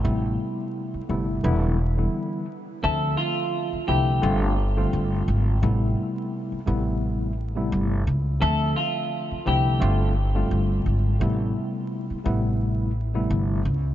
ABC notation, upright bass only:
X:1
M:4/4
L:1/8
Q:"Swing 16ths" 1/4=86
K:Am
V:1 name="Upright bass" clef=bass
A,,, z2 G,,, E,,,2 z2 | D,, z2 C,, G,,,2 G,,, ^G,,, | A,,, z2 A,,,3 G,,, ^C,, | D,, z2 C,, G,,,2 G,,, ^G,,, |
A,,, z2 A,,,3 G,,, ^C,, |]